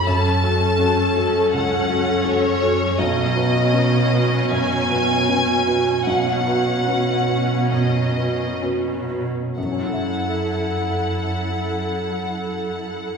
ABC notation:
X:1
M:4/4
L:1/16
Q:1/4=76
K:F#dor
V:1 name="Violin section"
a8 f4 c4 | d8 g8 | f8 d4 z4 | f16 |]
V:2 name="Felt piano"
F,,2 [FA]2 [CFA]2 [FA]2 C,,2 [FA]2 [CFA]2 [FA]2 | B,,,2 [FB]2 [CFB]2 [FB]2 F,,2 [FB]2 [CFB]2 [FB]2 | B,,,2 [FB]2 [CFB]2 [FB]2 F,,2 [FB]2 [CFB]2 [FB]2 | [F,,F,CEAe]16 |]
V:3 name="Viola section"
[CA]16 | [CF]16 | [CF]12- [CF]3 z | [EA]16 |]
V:4 name="Cello section" clef=bass
F,,16 | B,,16 | B,,12- B,,3 z | F,,16 |]